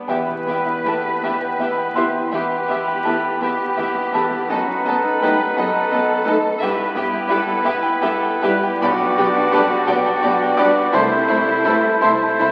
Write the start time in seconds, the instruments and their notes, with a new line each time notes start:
Already playing: grand piano B3 D4 G4
0.08 double bass section E2, grand piano E2 G4 E5 G5, bassoon B3, viola section B3, clarinet E4, violin section G4 E5, oboe B4, cello section B4, flute G5
0.27 grand piano B2
0.45 double bass section E2, grand piano B3, viola section B3, violin section G4 E5
0.66 grand piano E4
0.84 double bass section E2, viola section B3, french horn section B3 E4, grand piano G4 A4 A5, violin section G4 E5, trumpet B4
1.05 grand piano B4
1.22 double bass section E2, viola section B3, bassoon B3, clarinet E4, violin section G4 E5, oboe B4, grand piano B4 E5 G5 B5, flute G5
1.42 grand piano G5
1.59 double bass section E2, viola section B3, violin section G4 E5, grand piano E5
1.78 grand piano G5
1.95 double bass section E2, viola section B3, french horn section B3 E4, violin section G4 E5, trumpet B4, grand piano C5 E5 C6
2.14 grand piano G5
2.31 double bass section E2, viola section B3, bassoon B3, clarinet E4, cello section G4, violin section G4 E5, grand piano B4 E5 G5 B5, oboe B4, flute G5
2.52 grand piano G5
2.68 double bass section E2, viola section B3, violin section G4 E5, grand piano E5
2.88 grand piano G5
3.04 double bass section E2, french horn section B3 E4, viola section B3, violin section G4 E5, grand piano A4 E5 A5, trumpet B4
3.23 grand piano G5
3.41 double bass section E2, viola section B3, bassoon B3, clarinet E4, cello section G4, violin section G4 E5, grand piano B4 G5 B5, oboe B4, flute G5
3.59 grand piano G4
3.77 double bass section E2, viola section B3, grand piano E4, violin section G4 E5
3.95 grand piano B3
4.12 double bass section E2, grand piano B2 A4 F#5 A5, french horn section B3 E4, viola section B3, violin section G4 E5, trumpet B4
4.31 grand piano B3
4.48 grand piano F#2, double bass section F#2, viola section B3, bassoon B3, clarinet D#4, cello section F#4, violin section A4 D#5, oboe B4, flute A5
4.67 grand piano F#3
4.85 double bass section F#2, grand piano B3, viola section B3, cello section A4, violin section A4 D#5
5.03 grand piano D#4
5.21 double bass section F#2, french horn section A3 D#4, viola section B3, grand piano G4 A4 G5, violin section A4 D#5, trumpet B4, cello section B4
5.39 grand piano B4
5.57 double bass section F#2, viola section B3, bassoon B3, clarinet D#4, grand piano F#4 D#5 F#5, violin section A4 D#5, cello section A4, oboe B4, flute A5
5.74 grand piano A5
5.91 double bass section F#2, viola section B3, violin section A4 D#5, grand piano D#5
6.08 grand piano A5
6.24 double bass section F#2, french horn section A3 D#4, viola section B3, violin section A4 D#5, trumpet B4, grand piano D#5
6.43 grand piano A5
6.60 double bass section G2, grand piano G2, viola section B3, bassoon B3, clarinet E4, violin section G4 E5, cello section B4, oboe B4, flute B5
6.79 grand piano G3
6.95 double bass section G2, viola section B3, grand piano B3, violin section G4 E5, cello section G4
7.14 grand piano E4
7.28 double bass section G2, french horn section G3 E4, viola section B3, violin section G4 E5, grand piano G4, cello section A4, trumpet B4
7.48 grand piano B4
7.64 double bass section G2, viola section B3, violin section G4 E5, cello section B4, grand piano E5
7.83 grand piano G5
8.01 double bass section G2, viola section B3, violin section G4 E5, cello section A4, grand piano E5
8.23 grand piano G5
8.42 double bass section G2, french horn section G3 E4, viola section B3, cello section G4, violin section G4 E5, trumpet B4, grand piano E5
8.63 grand piano G5
8.81 double bass section B1, grand piano B1 B4 G5 B5, viola section B3, bassoon B3, clarinet D4, cello section F#4, violin section G4 D5, oboe D5, flute G5
9.02 grand piano B2
9.17 double bass section B1, viola section B3, grand piano B3, violin section G4 D5
9.36 grand piano D4
9.51 double bass section B1, french horn section G3 D4, viola section B3, violin section G4 D5, grand piano G4 A4 A5, trumpet B4
9.71 grand piano B4
9.86 double bass section B1, viola section B3, bassoon B3, clarinet D4, violin section G4 D5, grand piano G4 D5 G5, oboe D5, flute G5
10.06 grand piano G5
10.22 double bass section B1, viola section B3, violin section G4 D5, grand piano D5
10.42 grand piano G5
10.57 double bass section B1, french horn section G3 D4, viola section B3, violin section G4 D5, trumpet B4, grand piano D5 D6
10.77 grand piano G5
10.92 double bass section C2, grand piano C2 C5 A5 C6, viola section A3, bassoon A3, violin section E4 C5, cello section E4, clarinet E4, oboe C5, flute A5
11.11 grand piano C3
11.28 double bass section C2, grand piano A3, viola section A3, violin section E4 C5
11.47 grand piano E4
11.64 double bass section C2, french horn section A3 C4, viola section A3, violin section E4 C5, trumpet A4, grand piano A4 B4 B5
11.84 grand piano E4
12.01 double bass section C2, bassoon A3, viola section A3, violin section E4 C5, cello section E4, clarinet E4, grand piano C5 E5 A5 C6, oboe C5, flute A5
12.22 grand piano A5
12.39 double bass section C2, viola section A3, violin section E4 C5, grand piano E5